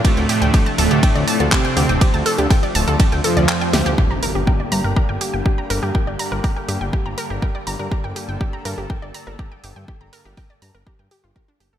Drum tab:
RD |x---x---x---x---|x---x---x---x---|----------------|----------------|
HH |xxoxoxoxxxoxxxox|xxoxoxoxxxoxxxox|--o---o---o---o-|--o-o-o---o---o-|
CP |------------x---|------------x---|----------------|----------------|
SD |----------------|--------------o-|----------------|----------------|
BD |o---o---o---o---|o---o---o-------|o---o---o---o---|o---o---o---o---|

RD |----------------|----------------|
HH |--o---o---o---o-|--o-o-o---o---o-|
CP |----------------|----------------|
SD |----------------|----------------|
BD |o---o---o---o---|o---o---o---o---|